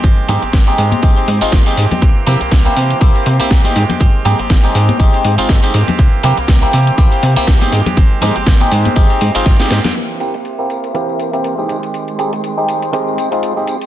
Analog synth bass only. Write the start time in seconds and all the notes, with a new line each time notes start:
0.04 G#1
0.29 G#2
0.43 G#1
0.53 G#1
0.78 G#2
1.03 G#1
1.28 G#2
1.42 G#1
1.53 G#1
1.77 G#2
2.02 C2
2.27 C3
2.41 C2
2.52 C2
2.77 C3
3.01 C2
3.26 C3
3.40 C2
3.51 C2
3.76 G#2
4.01 G#1
4.25 G#2
4.39 G#1
4.50 G#1
4.75 G#2
5.00 G#1
5.25 G#2
5.39 G#1
5.49 G#1
5.74 G#2
5.99 C2
6.24 C3
6.38 C2
6.48 C2
6.74 C3
6.98 C2
7.23 C3
7.37 C2
7.48 C2
7.73 G#2
7.97 G#1
8.22 G#2
8.36 G#1
8.47 G#1
8.72 G#2
8.96 G#1
9.21 G#2
9.35 G#1
9.46 G#1
9.71 G#2